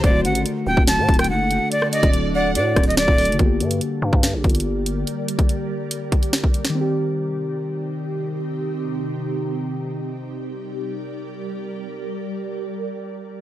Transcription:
0.00 0.26 D1 loud
0.00 3.33 D3 medium
0.00 3.36 D3 medium
0.00 3.36 D4 medium
0.00 3.36 F#4 medium
0.00 3.36 A4 medium
0.00 kick loud
0.00 closed hi-hat medium
0.04 3.36 A3 medium
0.04 0.21 D5 medium
0.10 3.38 F#4 medium
0.25 0.45 A1 loud
0.25 0.41 F#5 medium
0.25 closed hi-hat medium
0.35 closed hi-hat medium
0.46 closed hi-hat medium
0.67 0.77 D1 loud
0.67 0.83 G5 medium
0.77 1.00 D1 loud
0.77 kick loud
0.87 1.17 A5 medium
0.87 snare loud
0.87 closed hi-hat medium
0.98 1.08 A2 loud
1.09 1.31 D1 loud
1.09 kick loud
1.09 closed hi-hat medium
1.14 closed hi-hat medium
1.19 1.28 G5 medium
1.19 cross-stick loud
1.19 closed hi-hat medium
1.24 closed hi-hat medium
1.30 1.60 F#1 loud
1.30 1.69 F#5 medium
1.51 closed hi-hat medium
1.72 1.88 D5 medium
1.72 closed hi-hat medium
1.82 cross-stick medium
1.92 2.32 D5 medium
1.92 2.09 D#5 medium
1.92 closed hi-hat medium
2.03 2.57 D1 loud
2.03 kick loud
2.03 closed hi-hat medium
2.13 closed hi-hat medium
2.35 2.51 D5 medium
2.35 2.55 F#5 medium
2.55 2.75 A2 loud
2.55 2.85 D5 medium
2.55 closed hi-hat loud
2.76 3.07 D1 loud
2.76 kick medium
2.76 cross-stick medium
2.76 closed hi-hat medium
2.83 2.95 D#5 medium
2.83 closed hi-hat medium
2.90 closed hi-hat medium
2.97 3.37 D5 loud
2.97 snare loud
3.08 3.30 D1 loud
3.08 kick medium
3.18 closed hi-hat medium
3.18 open hi-hat medium
3.25 3.39 F#1 loud
3.25 closed hi-hat medium
3.32 6.68 D3 medium
3.32 closed hi-hat medium
3.39 3.62 G1 loud
3.39 6.72 G3 medium
3.39 6.71 A#3 medium
3.39 6.72 G4 medium
3.39 6.72 A#4 medium
3.39 6.72 D5 medium
3.39 kick loud
3.39 closed hi-hat medium
3.45 6.74 G4 medium
3.60 3.80 G2 loud
3.60 closed hi-hat medium
3.71 closed hi-hat medium
3.81 closed hi-hat medium
4.02 4.12 G2 loud
4.13 4.35 G2 loud
4.13 kick medium
4.23 snare loud
4.23 closed hi-hat medium
4.34 4.44 A#1 loud
4.44 5.05 G1 loud
4.44 kick medium
4.44 closed hi-hat soft
4.50 closed hi-hat medium
4.55 closed hi-hat medium
4.60 closed hi-hat medium
4.86 closed hi-hat medium
5.07 closed hi-hat medium
5.28 closed hi-hat medium
5.39 kick loud
5.39 closed hi-hat medium
5.49 closed hi-hat medium
5.91 closed hi-hat medium
6.12 kick medium
6.12 closed hi-hat medium
6.23 closed hi-hat medium
6.33 snare loud
6.44 kick medium
6.54 closed hi-hat medium
6.65 snare medium
6.65 closed hi-hat medium
6.69 10.04 D#3 medium
6.75 10.07 C3 medium
6.75 10.07 C4 medium
6.75 10.07 D#4 medium
6.75 10.07 G4 medium
6.81 10.10 G4 medium
10.11 13.41 G3 medium
10.11 13.41 G4 medium
10.11 13.41 A#4 medium
10.11 13.41 D5 medium

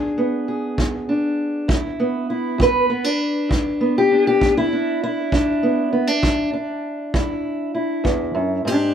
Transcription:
0.00 0.42 E2 medium
0.00 0.17 B3 soft
0.00 1.08 D4 soft
0.00 0.48 G#4 soft
0.18 1.99 B3 soft
0.48 1.68 G#4 soft
0.78 1.33 E2 medium
0.78 kick medium
1.09 1.71 D4 soft
1.68 2.23 E2 medium
1.68 2.29 E4 soft
1.68 kick medium
2.00 2.89 B3 soft
2.30 2.62 E4 soft
2.58 3.13 E2 medium
2.58 kick medium
2.62 3.97 B4 medium
2.90 3.04 B3 soft
3.04 4.10 D4 soft
3.49 4.04 E2 medium
3.49 kick medium
3.81 5.28 B3 soft
3.98 4.26 G4 medium
4.11 4.72 D4 soft
4.27 4.57 G4 medium
4.41 4.96 E2 medium
4.41 kick medium
4.57 5.02 E4 loud
4.73 5.29 D4 soft
5.04 7.13 E4 medium
5.32 5.87 E2 medium
5.32 5.92 D4 soft
5.32 kick medium
5.63 5.91 B3 soft
5.93 6.07 B3 soft
6.07 6.52 D4 soft
6.22 6.77 E2 medium
6.22 kick medium
6.53 8.65 D4 soft
7.14 7.68 E2 medium
7.14 7.74 E4 soft
7.14 kick medium
7.75 8.68 E4 soft
8.04 8.34 E2 medium
8.04 kick medium
8.35 8.65 F#2 medium
8.65 8.94 G#2 medium
8.65 8.94 D4 medium
8.65 8.94 G4 medium

